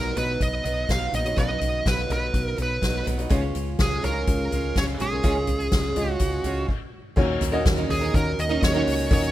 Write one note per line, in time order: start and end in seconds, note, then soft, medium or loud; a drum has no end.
0.00 0.12 B1 medium
0.00 0.12 B2 medium
0.00 0.12 F#3 medium
0.00 0.14 F#3 soft
0.00 0.15 B3 soft
0.00 3.27 B3 medium
0.00 0.16 D#4 soft
0.00 0.16 D#4 medium
0.00 3.27 D#4 soft
0.00 0.17 F#4 medium
0.00 3.26 F#4 medium
0.00 0.17 A#4 medium
0.00 0.16 B4 soft
0.00 0.17 D#5 medium
0.15 0.36 B1 medium
0.15 0.62 F#3 medium
0.15 0.63 B3 medium
0.15 1.04 D#4 medium
0.15 0.64 D#4 medium
0.15 1.04 F#4 medium
0.15 1.04 B4 medium
0.15 0.65 B4 medium
0.15 0.42 B4 medium
0.15 1.05 D#5 medium
0.15 closed hi-hat medium
0.15 floor tom medium
0.41 0.60 B1 medium
0.41 0.91 D#5 medium
0.41 kick medium
0.41 closed hi-hat medium
0.63 0.84 B1 medium
0.63 0.86 F#3 medium
0.63 0.87 B3 medium
0.63 0.88 D#4 medium
0.63 0.89 B4 medium
0.63 closed hi-hat medium
0.63 floor tom medium
0.87 1.09 B1 medium
0.87 1.11 F#3 medium
0.87 1.12 B3 medium
0.87 1.12 D#4 medium
0.87 1.13 B4 medium
0.87 1.12 F5 medium
0.87 kick medium
0.87 snare medium
0.87 closed hi-hat medium
1.12 1.33 A#1 medium
1.12 1.36 F#3 medium
1.12 1.36 B3 medium
1.12 1.36 D#4 medium
1.12 1.37 B4 medium
1.12 1.38 D#5 medium
1.12 closed hi-hat medium
1.12 floor tom medium
1.25 1.36 D#4 medium
1.25 1.34 F#4 medium
1.25 1.35 B4 medium
1.25 1.36 C#5 medium
1.25 closed hi-hat medium
1.36 1.57 B1 medium
1.36 1.49 B2 medium
1.36 2.05 B2 medium
1.36 1.49 D#3 medium
1.36 2.05 F#3 medium
1.36 1.49 F#3 medium
1.36 1.49 B3 medium
1.36 1.42 C#4 medium
1.36 1.48 D#4 medium
1.36 2.02 F#4 medium
1.36 2.03 B4 medium
1.36 1.47 B4 medium
1.36 1.88 D#5 medium
1.36 2.03 F5 medium
1.36 kick loud
1.36 closed hi-hat medium
1.41 2.05 D#4 medium
1.49 2.08 F#3 soft
1.49 2.09 B3 soft
1.49 2.10 D#4 soft
1.49 2.09 B4 medium
1.61 1.81 B1 medium
1.61 closed hi-hat medium
1.61 floor tom medium
1.86 2.06 B1 medium
1.86 2.11 B4 medium
1.86 kick loud
1.86 snare loud
1.86 closed hi-hat medium
2.09 2.30 B1 medium
2.09 2.55 F#3 medium
2.09 2.56 B3 medium
2.09 2.97 D#4 medium
2.09 2.57 D#4 medium
2.09 2.98 F#4 medium
2.09 2.98 B4 medium
2.09 2.58 B4 medium
2.09 2.56 B4 medium
2.09 2.98 D#5 medium
2.09 closed hi-hat medium
2.09 floor tom medium
2.34 2.54 B1 loud
2.34 kick medium
2.34 closed hi-hat medium
2.57 2.78 B1 medium
2.57 2.80 F#3 medium
2.57 2.81 B3 medium
2.57 2.82 D#4 medium
2.57 2.82 B4 medium
2.57 closed hi-hat medium
2.57 floor tom soft
2.62 3.05 B4 medium
2.81 3.02 B1 medium
2.81 3.03 F#3 medium
2.81 3.04 B3 medium
2.81 3.05 D#4 medium
2.81 3.05 B4 medium
2.81 kick medium
2.81 snare medium
2.81 closed hi-hat medium
3.04 3.26 B1 medium
3.04 3.29 F#3 medium
3.04 3.30 B3 medium
3.04 3.30 D#4 medium
3.04 3.31 B4 medium
3.04 closed hi-hat medium
3.04 floor tom medium
3.18 3.29 D#4 medium
3.18 3.29 F#4 medium
3.18 3.30 B4 medium
3.18 3.30 D#5 medium
3.18 closed hi-hat medium
3.29 3.50 C#2 loud
3.29 3.42 C#3 medium
3.29 6.65 C#3 medium
3.29 3.99 C#3 medium
3.29 3.42 G#3 medium
3.29 3.99 G#3 medium
3.29 3.96 C#4 medium
3.29 6.66 C#4 soft
3.29 3.42 C#4 medium
3.29 6.65 F4 medium
3.29 3.96 F4 medium
3.29 3.41 F4 medium
3.29 6.65 G#4 medium
3.29 3.97 G#4 medium
3.29 3.97 C#5 medium
3.29 3.40 C#5 medium
3.29 kick loud
3.29 closed hi-hat medium
3.41 4.02 C#4 soft
3.41 4.02 F4 soft
3.41 4.03 C#5 soft
3.55 3.75 C#2 medium
3.55 closed hi-hat medium
3.79 3.99 C#2 loud
3.79 4.05 G#4 medium
3.79 kick loud
3.79 snare loud
3.79 closed hi-hat medium
4.01 4.23 C#2 medium
4.01 4.50 G#3 medium
4.01 4.91 C#4 medium
4.01 4.51 C#4 medium
4.01 4.09 D#4 soft
4.01 4.52 F4 medium
4.01 4.91 G#4 medium
4.01 4.79 A#4 medium
4.01 4.91 C#5 medium
4.01 4.53 C#5 medium
4.01 snare soft
4.01 closed hi-hat medium
4.01 floor tom medium
4.09 4.94 F4 medium
4.27 4.47 C#2 loud
4.27 kick loud
4.27 closed hi-hat medium
4.51 4.72 C#2 medium
4.51 4.73 G#3 medium
4.51 4.74 C#4 medium
4.51 4.75 F4 medium
4.51 4.76 C#5 medium
4.51 closed hi-hat medium
4.51 floor tom medium
4.75 4.96 C#2 medium
4.75 4.97 G#3 medium
4.75 4.98 C#4 medium
4.75 4.99 F4 medium
4.75 5.00 C#5 medium
4.75 4.84 C#5 medium
4.75 kick medium
4.75 snare medium
4.75 closed hi-hat medium
4.98 5.20 B1 medium
4.98 5.22 G#3 medium
4.98 5.22 C#4 medium
4.98 5.23 F4 medium
4.98 6.10 G#4 medium
4.98 5.23 C#5 medium
4.98 closed hi-hat medium
4.98 floor tom medium
5.11 5.22 C#4 medium
5.11 5.23 F4 medium
5.11 5.23 G#4 medium
5.11 5.24 A#4 medium
5.23 5.44 C#2 medium
5.23 5.35 C#3 medium
5.23 5.93 C#3 medium
5.23 5.36 G#3 medium
5.23 5.93 G#3 medium
5.23 5.36 C#4 medium
5.23 5.90 C#4 medium
5.23 5.35 F4 loud
5.23 5.90 F4 medium
5.23 5.91 G#4 medium
5.23 5.34 C#5 medium
5.23 5.91 D#5 medium
5.23 kick loud
5.23 closed hi-hat medium
5.35 5.96 C#4 soft
5.35 5.97 F4 soft
5.35 5.98 C#5 medium
5.47 5.68 C#2 medium
5.47 closed hi-hat medium
5.47 floor tom medium
5.60 closed hi-hat soft
5.72 5.92 C#2 medium
5.72 kick loud
5.72 snare loud
5.72 closed hi-hat medium
5.95 6.17 C#2 medium
5.95 6.43 G#3 medium
5.95 6.69 C#4 medium
5.95 6.44 C#4 medium
5.95 6.69 F4 medium
5.95 6.44 F4 medium
5.95 6.69 G#4 medium
5.95 6.46 C#5 medium
5.95 6.69 D#5 medium
5.95 closed hi-hat medium
5.95 floor tom medium
6.10 6.66 F#4 medium
6.19 6.40 C#2 loud
6.19 kick medium
6.19 closed hi-hat medium
6.44 6.64 C#2 medium
6.44 6.69 G#3 medium
6.44 6.69 C#4 medium
6.44 6.70 F4 medium
6.44 6.70 C#5 medium
6.44 closed hi-hat medium
6.44 floor tom medium
6.68 kick medium
6.68 crash medium
7.16 7.37 D#2 loud
7.16 7.86 A#2 medium
7.16 9.32 D#3 medium
7.16 7.53 F#3 medium
7.16 9.32 A#3 medium
7.16 7.50 C#4 medium
7.16 7.53 C#4 medium
7.16 9.32 C#4 medium
7.16 7.50 D#4 medium
7.16 7.52 D#4 medium
7.16 7.50 F#4 medium
7.16 9.32 F#4 medium
7.16 7.50 A#4 medium
7.16 7.51 A#4 medium
7.16 7.51 C#5 loud
7.16 kick loud
7.16 crash medium
7.41 7.61 D#2 medium
7.41 floor tom medium
7.41 hi-hat pedal medium
7.41 open hi-hat medium
7.52 8.08 C#4 loud
7.52 7.78 C#4 medium
7.52 8.08 D#4 medium
7.52 7.77 D#4 medium
7.52 8.08 F#4 loud
7.52 7.76 A#4 medium
7.52 8.09 A#4 medium
7.52 8.09 D#5 loud
7.65 7.86 D#2 loud
7.65 kick loud
7.65 snare loud
7.65 hi-hat pedal medium
7.65 open hi-hat medium
7.77 8.02 C#4 soft
7.77 8.01 D#4 medium
7.77 8.00 A#4 medium
7.89 8.10 D#2 loud
7.89 8.13 G#4 medium
7.89 floor tom medium
7.89 hi-hat pedal medium
7.89 open hi-hat medium
8.01 8.49 C#4 soft
8.01 8.49 D#4 medium
8.01 8.48 A#4 medium
8.13 8.34 D#2 loud
8.13 9.02 C#4 medium
8.13 9.02 D#4 medium
8.13 9.03 F#4 medium
8.13 9.03 A#4 medium
8.13 8.40 A#4 loud
8.13 9.03 C#5 medium
8.13 kick loud
8.13 hi-hat pedal medium
8.13 open hi-hat medium
8.38 8.58 D#2 medium
8.38 8.64 D#5 loud
8.38 hi-hat pedal medium
8.38 open hi-hat medium
8.49 8.75 D#3 medium
8.49 8.75 F#3 medium
8.49 8.74 C#4 medium
8.49 8.74 D#4 medium
8.49 8.73 A#4 loud
8.62 8.83 D#2 loud
8.62 9.12 C#5 loud
8.62 kick loud
8.62 snare loud
8.62 hi-hat pedal medium
8.62 open hi-hat loud
8.74 9.12 D#3 medium
8.74 9.08 F#3 medium
8.74 9.09 C#4 medium
8.74 9.10 D#4 medium
8.74 9.11 A#4 medium
8.87 9.07 C#2 medium
8.87 hi-hat pedal medium
8.87 open hi-hat medium
8.99 open hi-hat medium
9.10 9.31 D#2 medium
9.10 9.32 A#2 medium
9.10 9.32 F#3 medium
9.10 9.32 C#4 medium
9.10 9.32 D#4 medium
9.10 9.32 F#4 medium
9.10 9.32 A#4 medium
9.10 9.32 C#5 loud
9.10 9.32 D#5 medium
9.10 kick loud
9.10 hi-hat pedal medium
9.10 open hi-hat medium
9.23 hi-hat pedal medium